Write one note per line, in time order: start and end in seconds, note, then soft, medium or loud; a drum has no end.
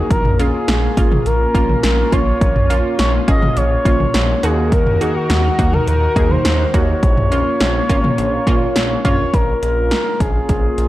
0.11 0.51 A#1 loud
0.11 4.39 A#3 medium
0.11 4.39 C#4 medium
0.11 4.39 F4 medium
0.11 0.41 A#4 loud
0.11 kick loud
0.11 closed hi-hat medium
0.25 mid tom medium
0.39 0.60 A#3 medium
0.39 0.60 C#4 medium
0.39 0.60 F4 medium
0.39 1.28 G#4 loud
0.39 closed hi-hat medium
0.68 0.88 A#1 loud
0.68 snare loud
0.68 closed hi-hat medium
0.97 1.17 G#1 medium
0.97 1.17 A#3 medium
0.97 1.17 C#4 medium
0.97 1.17 F4 medium
0.97 kick medium
0.97 closed hi-hat medium
1.12 mid tom medium
1.26 1.46 A#1 loud
1.26 2.14 A#4 loud
1.26 closed hi-hat medium
1.55 1.75 A#1 loud
1.55 1.75 A#3 medium
1.55 1.75 C#4 medium
1.55 1.75 F4 medium
1.55 kick medium
1.55 closed hi-hat medium
1.69 mid tom medium
1.83 2.04 A#1 loud
1.83 snare loud
1.83 closed hi-hat medium
2.12 2.33 A#1 loud
2.12 2.33 A#3 medium
2.12 2.33 C#4 medium
2.12 2.33 F4 medium
2.12 2.99 C#5 loud
2.12 kick medium
2.12 closed hi-hat medium
2.41 2.82 A#1 loud
2.41 kick loud
2.41 closed hi-hat medium
2.56 mid tom medium
2.70 2.90 A#3 medium
2.70 2.90 C#4 medium
2.70 2.90 F4 medium
2.70 closed hi-hat medium
2.99 3.19 A#1 loud
2.99 3.12 C#5 loud
2.99 snare loud
2.99 closed hi-hat medium
3.28 3.48 G#1 loud
3.28 3.48 A#3 medium
3.28 3.48 C#4 medium
3.28 3.48 G#4 medium
3.28 3.58 D#5 loud
3.28 kick medium
3.28 closed hi-hat medium
3.42 mid tom medium
3.57 3.77 A#1 loud
3.57 4.43 C#5 loud
3.57 closed hi-hat medium
3.85 4.06 A#1 loud
3.85 4.06 A#3 medium
3.85 4.06 C#4 medium
3.85 4.06 F4 medium
3.85 kick medium
3.85 closed hi-hat medium
4.00 mid tom medium
4.14 4.35 A#1 loud
4.14 snare loud
4.14 closed hi-hat medium
4.43 5.04 D#2 loud
4.43 7.00 D#3 medium
4.43 4.89 A#3 medium
4.43 7.00 D#4 medium
4.43 4.89 D#4 medium
4.43 4.89 F#4 medium
4.43 7.00 F#4 medium
4.43 4.74 G#4 medium
4.43 7.00 A#4 medium
4.43 closed hi-hat medium
4.72 5.00 A#4 loud
4.72 kick loud
4.72 closed hi-hat medium
4.87 mid tom medium
5.01 5.21 A#3 medium
5.01 5.21 D#4 medium
5.01 5.21 F#4 medium
5.01 5.14 G#4 medium
5.01 closed hi-hat medium
5.15 5.75 F#4 medium
5.30 5.50 D#2 loud
5.30 snare loud
5.30 closed hi-hat medium
5.59 5.79 D#2 loud
5.59 5.79 A#3 medium
5.59 5.79 D#4 medium
5.59 5.79 F#4 medium
5.59 kick medium
5.59 closed hi-hat medium
5.73 5.87 A#4 medium
5.73 mid tom medium
5.87 6.08 D#2 loud
5.87 6.32 A#4 loud
5.87 closed hi-hat medium
6.16 6.36 D#2 loud
6.16 6.37 A#3 medium
6.16 6.37 D#4 medium
6.16 6.37 G#4 medium
6.16 kick medium
6.16 closed hi-hat medium
6.31 6.73 C5 loud
6.31 mid tom medium
6.45 6.65 D#2 loud
6.45 snare loud
6.45 closed hi-hat medium
6.74 6.94 D#2 loud
6.74 6.94 A#3 medium
6.74 6.94 D#4 medium
6.74 6.94 F#4 medium
6.74 9.01 C#5 loud
6.74 kick medium
6.74 closed hi-hat medium
7.03 7.43 A#1 loud
7.03 9.31 A#3 medium
7.03 9.31 C#4 medium
7.03 9.31 F4 medium
7.03 kick loud
7.03 closed hi-hat medium
7.17 mid tom medium
7.32 7.52 A#3 medium
7.32 7.52 C#4 medium
7.32 7.52 F4 medium
7.32 closed hi-hat medium
7.60 7.81 A#1 loud
7.60 snare loud
7.60 closed hi-hat medium
7.89 8.10 G#1 medium
7.89 8.10 A#3 medium
7.89 8.10 C#4 medium
7.89 8.10 F4 loud
7.89 kick medium
7.89 closed hi-hat medium
8.04 mid tom medium
8.18 8.38 A#1 loud
8.18 closed hi-hat medium
8.47 8.67 A#1 loud
8.47 8.67 A#3 medium
8.47 8.67 C#4 medium
8.47 8.67 F4 loud
8.47 kick medium
8.47 closed hi-hat medium
8.76 8.96 A#1 loud
8.76 snare loud
8.76 closed hi-hat medium
9.05 9.25 A#1 loud
9.05 9.25 A#3 medium
9.05 9.25 C#4 medium
9.05 9.25 F4 loud
9.05 9.35 C#5 loud
9.05 kick medium
9.05 closed hi-hat medium
9.05 mid tom medium
9.33 9.54 A#1 loud
9.33 10.88 A#3 medium
9.33 10.88 C#4 medium
9.33 10.88 F4 medium
9.33 9.62 A#4 loud
9.33 kick loud
9.33 closed hi-hat medium
9.62 9.93 A#1 loud
9.62 10.22 A#4 loud
9.62 closed hi-hat medium
9.91 snare loud
9.91 closed hi-hat medium
10.20 10.40 A#1 medium
10.20 10.88 G#4 loud
10.20 kick medium
10.20 closed hi-hat medium
10.49 10.69 A#1 loud
10.49 kick medium
10.49 closed hi-hat medium
10.78 10.88 A#1 loud
10.78 closed hi-hat medium